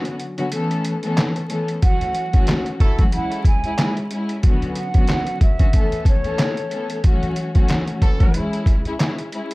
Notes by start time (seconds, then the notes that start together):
Already playing: D3 F#3 B3 C#4 F#4
0.05 closed hi-hat
0.20 closed hi-hat
0.38 D3 F#3 B3 C#4 F#4, closed hi-hat
0.52 E3 A3 B3 C#4 A4, closed hi-hat
0.71 closed hi-hat
0.85 closed hi-hat
1.03 E3 A3 B3 C#4 A4, closed hi-hat
1.17 snare, clap, closed hi-hat
1.36 closed hi-hat
1.49 E3 A3 B3 C#4 A4, closed hi-hat
1.68 closed hi-hat
1.82 E3 F#3 A3 C#4 F#4 F#5, kick, closed hi-hat
2.01 closed hi-hat
2.15 closed hi-hat
2.32 E3 F#3 A3 C#4 F#4, kick, closed hi-hat
2.47 snare, clap, closed hi-hat
2.66 closed hi-hat
2.80 F#3 E4 A4 E5, kick, snare, closed hi-hat
2.99 E3 F#3 A3 C#4 F#4, kick, closed hi-hat
3.12 G#3 C#4 E4 F#5, closed hi-hat
3.32 closed hi-hat
3.45 G#5, kick, closed hi-hat
3.64 G#3 C#4 E4, closed hi-hat
3.78 G#3 C#4 E4, snare, clap, closed hi-hat
3.97 closed hi-hat
4.11 G#3 C#4 E4, closed hi-hat
4.29 closed hi-hat
4.43 D3 F#3 B3 C#4 F#4, kick, closed hi-hat
4.62 closed hi-hat
4.75 F#5, closed hi-hat
4.94 D3 F#3 B3 C#4 F#4, kick, closed hi-hat
5.08 snare, clap, closed hi-hat
5.27 closed hi-hat
5.41 E5, kick, closed hi-hat
5.59 D3 F#3 B3 C#4 F#4, kick, closed hi-hat
5.73 E3 A3 B3 C#4 A4, kick, closed hi-hat
5.92 closed hi-hat
6.05 C#5, kick, closed hi-hat
6.24 E3 A3 B3 C#4 A4, closed hi-hat
6.39 snare, clap, closed hi-hat
6.57 closed hi-hat
6.71 E3 A3 B3 C#4 A4, closed hi-hat
6.90 closed hi-hat
7.04 E3 F#3 A3 C#4 F#4, kick, closed hi-hat
7.23 closed hi-hat
7.36 closed hi-hat
7.54 E3 F#3 A3 C#4 F#4, kick, closed hi-hat
7.68 snare, clap, closed hi-hat
7.88 closed hi-hat
8.02 E3 C#4 A4, kick, snare, closed hi-hat
8.20 E3 F#3 A3 C#4 F#4, kick, closed hi-hat
8.34 G#3 C#4 E4, closed hi-hat
8.53 closed hi-hat
8.66 kick, closed hi-hat
8.85 G#3 C#4 E4, closed hi-hat
9.00 G#3 C#4 E4, snare, clap, closed hi-hat
9.19 closed hi-hat
9.32 G#3 C#4 E4, closed hi-hat
9.51 closed hi-hat